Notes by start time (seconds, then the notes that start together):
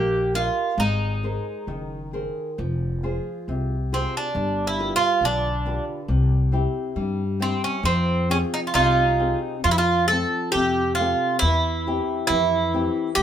Already playing: A#1 A#3 G4 A#4 D#5
0.34 F4 G4 A#4 D#5
0.78 G#1 G#3 D#4
1.23 G#4 A#4 C5
1.67 F#1 D#3
2.13 G#4 A#4 C5
2.58 F1 F3
3.03 F4 G#4 C5
3.48 C2 C3
3.92 C4 F4 G#4 C5
4.17 D4
4.35 G1 G3
4.67 E4
4.79 F4 G4 B4
4.96 F4
5.21 B1 D3
5.25 D4
5.65 F4 G4 B4
6.08 C2 C3
6.52 C4 E4 G4
6.96 G2 G3
7.40 C4 E4 G4
7.64 C#4
7.83 F2 F3 C4
8.30 C4 C#4 F4 G#4
8.54 D#4
8.67 F4
8.74 C2 C3 D#4 F4
9.19 C4 F4 G#4
9.64 F2 F3 F4
9.71 E4
9.78 F4
10.08 C4 F4 A4
10.12 A4
10.52 F2 C3 G4
10.95 F4
10.99 C4 F4 A4
11.39 E2 E3 E4
11.87 C4 E4 G4
12.27 F2 E3 E4
12.74 C4 E4 G4
13.15 G2 G3 G4